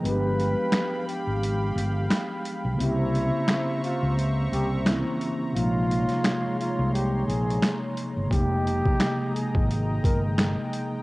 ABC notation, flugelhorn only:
X:1
M:4/4
L:1/16
Q:"Swing 16ths" 1/4=87
K:Fm
V:1 name="Flugelhorn"
=B6 G6 z4 | =E6 F2 z2 G z4 z | F6 F2 G2 A3 z3 | G6 A2 z2 B z4 z |]